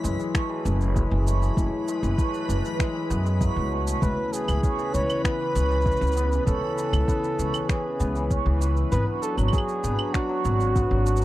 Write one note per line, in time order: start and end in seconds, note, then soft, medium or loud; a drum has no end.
0.00 0.13 F#1 medium
0.00 0.18 E3 medium
0.00 3.98 F#3 medium
0.00 0.94 G#3 loud
0.00 8.88 E4 medium
0.00 3.98 G#4 medium
0.00 11.25 B4 medium
0.00 3.99 C#5 medium
0.00 11.25 B5 medium
0.04 shaker medium
0.19 0.48 E3 medium
0.19 shaker soft
0.34 1.01 A3 medium
0.34 finger snap medium
0.34 kick loud
0.34 shaker soft
0.49 0.64 E3 loud
0.65 1.02 F#1 loud
0.65 1.09 E3 medium
0.65 shaker medium
0.81 shaker soft
0.95 1.87 G#3 medium
0.95 kick loud
0.95 shaker soft
1.11 1.48 F#1 medium
1.11 1.40 E3 medium
1.26 1.94 A3 medium
1.26 shaker medium
1.42 1.55 E3 medium
1.42 shaker soft
1.56 1.66 F#1 medium
1.56 2.02 E3 medium
1.56 kick medium
1.56 shaker soft
1.88 2.78 G#3 medium
1.88 shaker medium
2.03 2.12 F#1 medium
2.03 2.32 E3 medium
2.03 shaker soft
2.18 2.85 A3 medium
2.18 kick loud
2.18 shaker soft
2.34 2.48 E3 medium
2.34 shaker soft
2.49 2.58 F#1 medium
2.49 2.93 E3 medium
2.49 shaker medium
2.65 shaker soft
2.79 3.24 G#3 medium
2.79 finger snap medium
2.79 kick loud
2.79 shaker soft
2.95 4.01 E3 medium
3.10 3.46 F#2 medium
3.10 4.33 B3 medium
3.10 shaker medium
3.25 4.07 G#3 medium
3.25 shaker soft
3.41 4.07 F#3 medium
3.41 kick loud
3.41 shaker soft
3.56 3.92 C#2 medium
3.72 3.86 A3 medium
3.87 8.31 A3 medium
3.87 shaker medium
4.02 4.11 C#2 medium
4.02 8.88 C#3 medium
4.02 4.47 E3 medium
4.02 8.88 C#4 medium
4.02 4.34 B4 loud
4.02 11.25 B4 medium
4.02 kick medium
4.02 shaker soft
4.33 5.24 B3 medium
4.33 4.95 G#4 loud
4.33 shaker medium
4.48 4.57 C#2 medium
4.48 4.77 E3 medium
4.48 claves medium
4.48 shaker soft
4.63 5.55 C#4 medium
4.63 kick loud
4.63 shaker soft
4.78 4.93 E3 medium
4.78 shaker soft
4.94 5.03 C#2 medium
4.94 5.39 E3 medium
4.94 5.23 C#5 loud
4.94 shaker medium
5.10 claves medium
5.10 shaker soft
5.24 6.15 B3 loud
5.24 6.43 B4 loud
5.24 finger snap medium
5.24 kick loud
5.24 shaker soft
5.40 5.69 E3 medium
5.55 5.91 C#2 medium
5.55 6.46 C#4 medium
5.55 shaker medium
5.70 5.84 E3 medium
5.70 shaker soft
5.81 6.30 E3 medium
5.81 shaker soft
5.86 kick loud
5.86 shaker soft
5.92 shaker soft
5.97 shaker soft
6.01 6.37 C#2 medium
6.01 shaker soft
6.07 shaker soft
6.12 7.07 B3 loud
6.12 shaker soft
6.17 shaker medium
6.31 6.61 E3 medium
6.31 shaker soft
6.46 6.56 C#2 medium
6.46 7.38 C#4 medium
6.46 7.70 A4 loud
6.46 kick medium
6.46 shaker soft
6.62 6.76 E3 medium
6.78 7.22 E3 medium
6.78 shaker medium
6.93 7.02 C#2 medium
6.93 claves medium
6.93 shaker soft
7.08 7.99 B3 medium
7.08 kick loud
7.08 shaker soft
7.23 7.53 E3 medium
7.23 shaker soft
7.39 7.48 C#2 medium
7.39 8.30 C#4 medium
7.39 shaker medium
7.54 7.68 E3 medium
7.54 claves medium
7.54 shaker soft
7.69 8.14 E3 medium
7.69 8.61 G#4 medium
7.69 finger snap medium
7.69 kick loud
7.69 shaker soft
8.00 8.36 C#2 medium
8.00 8.91 B3 medium
8.00 shaker medium
8.15 8.45 E3 medium
8.15 shaker soft
8.30 9.28 C#4 medium
8.30 kick loud
8.30 shaker soft
8.46 8.82 C#2 medium
8.46 8.60 E3 loud
8.61 8.97 E3 medium
8.61 shaker medium
8.77 shaker soft
8.92 9.01 G#1 medium
8.92 11.25 F#3 medium
8.92 9.83 B3 medium
8.92 11.25 D4 medium
8.92 11.25 F#4 medium
8.92 9.06 B4 loud
8.92 kick medium
8.92 shaker soft
9.07 9.36 F#3 medium
9.22 10.13 D4 medium
9.22 9.36 A4 medium
9.22 shaker medium
9.37 9.47 G#1 medium
9.37 9.51 F#3 medium
9.37 claves soft
9.37 shaker soft
9.48 claves soft
9.52 9.98 F#3 medium
9.52 10.15 G#4 loud
9.52 kick loud
9.52 shaker soft
9.58 claves medium
9.69 shaker soft
9.83 9.93 G#1 medium
9.83 10.75 B3 medium
9.83 shaker medium
9.99 10.28 F#3 medium
9.99 claves medium
10.14 11.05 D4 medium
10.14 11.25 F#4 loud
10.14 finger snap medium
10.14 kick medium
10.14 shaker soft
10.29 10.44 F#3 loud
10.45 10.81 G#1 medium
10.45 10.89 F#3 loud
10.45 shaker medium
10.60 shaker soft
10.75 11.25 B3 loud
10.75 kick medium
10.75 shaker soft
10.90 11.25 G#1 medium
10.90 11.20 F#3 medium
11.06 11.25 D4 medium
11.06 shaker medium
11.16 shaker medium
11.21 11.25 F#3 medium